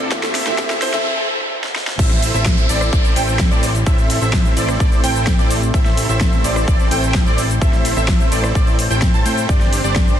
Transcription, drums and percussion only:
0.12 kick, snare, closed hi-hat
0.23 snare, closed hi-hat
0.35 snare, open hi-hat
0.47 snare
0.58 kick, snare, closed hi-hat
0.70 snare, closed hi-hat
0.82 snare, open hi-hat
0.94 snare, closed hi-hat
1.64 snare
1.76 snare
1.87 snare
1.99 kick, closed hi-hat, crash, cabasa
2.10 snare, closed hi-hat, cabasa
2.22 open hi-hat, cabasa
2.34 closed hi-hat, cabasa
2.46 kick, snare, closed hi-hat, cabasa
2.58 closed hi-hat, cabasa
2.69 open hi-hat, cabasa
2.81 cross-stick, closed hi-hat, cabasa
2.93 kick, closed hi-hat, cabasa
3.04 closed hi-hat, cabasa
3.16 open hi-hat, cabasa
3.28 closed hi-hat, cabasa
3.39 kick, snare, closed hi-hat, cabasa
3.51 closed hi-hat, cabasa
3.63 open hi-hat, cabasa
3.75 closed hi-hat, cabasa
3.86 kick, closed hi-hat, cabasa
3.98 closed hi-hat, cabasa
4.10 open hi-hat, cabasa
4.22 closed hi-hat, cabasa
4.33 kick, snare, closed hi-hat, cabasa
4.45 closed hi-hat, cabasa
4.57 open hi-hat, cabasa
4.69 cross-stick, closed hi-hat, cabasa
4.80 kick, closed hi-hat, cabasa
4.92 closed hi-hat, cabasa
5.04 open hi-hat, cabasa
5.15 closed hi-hat, cabasa
5.27 kick, snare, closed hi-hat, cabasa
5.39 closed hi-hat, cabasa
5.51 open hi-hat, cabasa
5.62 closed hi-hat, cabasa
5.74 kick, closed hi-hat, cabasa
5.86 snare, closed hi-hat, cabasa
5.97 open hi-hat, cabasa
6.09 closed hi-hat, cabasa
6.21 kick, snare, closed hi-hat, cabasa
6.33 closed hi-hat, cabasa
6.44 open hi-hat, cabasa
6.56 cross-stick, closed hi-hat, cabasa
6.68 kick, closed hi-hat, cabasa
6.80 closed hi-hat, cabasa
6.91 open hi-hat, cabasa
7.03 closed hi-hat, cabasa
7.14 kick, snare, closed hi-hat, cabasa
7.26 closed hi-hat, cabasa
7.38 open hi-hat, cabasa
7.50 closed hi-hat, cabasa
7.62 kick, closed hi-hat, cabasa
7.73 snare, closed hi-hat, cabasa
7.85 open hi-hat, cabasa
7.97 closed hi-hat, cabasa
8.08 kick, snare, closed hi-hat, cabasa
8.20 closed hi-hat, cabasa
8.32 open hi-hat, cabasa
8.44 cross-stick, closed hi-hat, cabasa
8.55 kick, closed hi-hat, cabasa
8.67 closed hi-hat, cabasa
8.79 open hi-hat, cabasa
8.90 closed hi-hat, cabasa
9.02 kick, snare, closed hi-hat, cabasa
9.14 closed hi-hat, cabasa
9.26 open hi-hat, cabasa
9.37 closed hi-hat, cabasa
9.49 kick, closed hi-hat, cabasa
9.61 snare, closed hi-hat, cabasa
9.73 open hi-hat, cabasa
9.84 closed hi-hat, cabasa
9.96 kick, snare, closed hi-hat, cabasa
10.08 closed hi-hat, cabasa

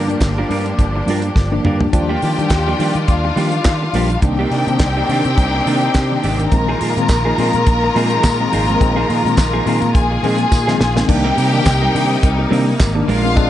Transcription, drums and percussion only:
0.10 closed hi-hat
0.20 kick, snare, clap, closed hi-hat
0.51 open hi-hat
0.66 closed hi-hat
0.79 kick, closed hi-hat
1.08 open hi-hat
1.22 closed hi-hat
1.36 kick, snare
1.65 mid tom
1.80 floor tom
1.93 kick, closed hi-hat
2.22 open hi-hat
2.39 closed hi-hat
2.50 kick, snare, clap, closed hi-hat
2.80 open hi-hat
2.95 closed hi-hat
3.08 kick, closed hi-hat
3.37 open hi-hat
3.52 closed hi-hat
3.64 kick, snare, clap, closed hi-hat
3.94 open hi-hat
4.10 closed hi-hat
4.22 kick, closed hi-hat
4.51 open hi-hat
4.68 closed hi-hat
4.79 kick, snare, clap, closed hi-hat
5.09 open hi-hat
5.24 closed hi-hat
5.38 kick, closed hi-hat
5.67 open hi-hat
5.81 closed hi-hat
5.94 kick, snare, clap, closed hi-hat
6.24 open hi-hat
6.40 closed hi-hat
6.52 kick, closed hi-hat
6.81 open hi-hat
6.97 closed hi-hat
7.08 kick, snare, clap, closed hi-hat, tambourine
7.38 open hi-hat
7.53 closed hi-hat
7.67 kick, closed hi-hat
7.96 open hi-hat
8.10 closed hi-hat
8.23 kick, snare, clap, closed hi-hat, tambourine
8.53 open hi-hat
8.69 closed hi-hat
8.81 kick, closed hi-hat
9.10 open hi-hat
9.26 closed hi-hat
9.37 kick, snare, clap, closed hi-hat, tambourine
9.67 open hi-hat
9.82 closed hi-hat
9.95 kick, closed hi-hat
10.24 open hi-hat
10.38 closed hi-hat
10.52 kick, snare, tambourine
10.68 snare
10.81 snare
10.97 snare
11.09 kick, crash
11.38 open hi-hat
11.65 kick, snare, clap, closed hi-hat, tambourine
11.96 open hi-hat
12.23 kick, closed hi-hat
12.53 open hi-hat
12.80 kick, snare, clap, closed hi-hat, tambourine
13.09 open hi-hat
13.37 kick, closed hi-hat

